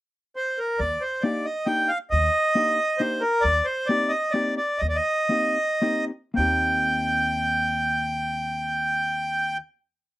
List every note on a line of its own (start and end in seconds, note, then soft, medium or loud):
0.36 0.59 C5 medium
0.58 0.80 A#4 medium
0.79 0.94 D#2 medium
0.79 1.03 D5 medium
1.01 1.23 C5 medium
1.21 1.46 A#3 medium
1.21 1.47 D4 soft
1.21 1.47 D#4 soft
1.21 1.47 G4 medium
1.21 1.46 D5 medium
1.45 1.67 D#5 medium
1.66 1.90 A#3 soft
1.66 1.90 D4 medium
1.66 1.90 D#4 medium
1.66 1.90 G4 soft
1.66 1.90 G5 medium
1.88 1.98 F5 medium
2.10 2.27 D#2 medium
2.10 3.02 D#5 medium
2.55 2.78 A#3 soft
2.55 2.79 D4 soft
2.55 2.79 D#4 soft
2.55 2.79 G4 soft
2.98 3.23 A#3 medium
2.98 3.23 D4 soft
2.98 3.23 D#4 soft
2.98 3.23 G4 medium
2.98 3.22 C5 medium
3.21 3.43 A#4 medium
3.41 3.59 D#2 medium
3.41 3.66 D5 loud
3.65 3.88 C5 medium
3.86 4.12 A#3 medium
3.86 4.13 C4 soft
3.86 4.13 D#4 soft
3.86 4.12 D5 medium
3.91 4.13 G4 medium
4.09 4.33 D#5 medium
4.31 4.58 A#3 medium
4.31 4.58 C4 soft
4.31 4.55 D5 medium
4.35 4.59 D#4 soft
4.35 4.59 G4 medium
4.57 4.81 D5 medium
4.78 4.98 D#2 medium
4.78 4.87 D#5 medium
4.89 4.97 D5 medium
4.95 6.05 D#5 medium
5.30 5.56 A#3 soft
5.30 5.56 C4 soft
5.30 5.57 D#4 soft
5.30 5.57 G4 soft
5.82 6.10 A#3 medium
5.82 6.10 C4 medium
5.82 6.10 D#4 medium
5.82 6.10 G4 medium
6.34 9.59 D#2 medium
6.34 9.55 A#3 medium
6.34 9.57 C4 medium
6.34 9.57 G5 medium
6.38 9.59 D#4 soft
6.38 9.61 G4 medium